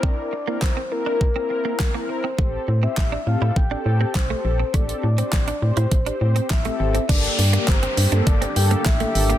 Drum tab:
CC |----------------|----------------|----------------|x---------------|
HH |----------------|----------------|xx-xxx-xxx-xxx-x|xxoxxxoxxxoxxxox|
CP |----x-------x---|----x-------x---|----x-------x---|----x-------x---|
SD |----o-------o---|----o-------o---|----o-------o---|----o-------o---|
BD |o---o---o---o---|o---o---o---o---|o---o---o---o---|o---o---o---o---|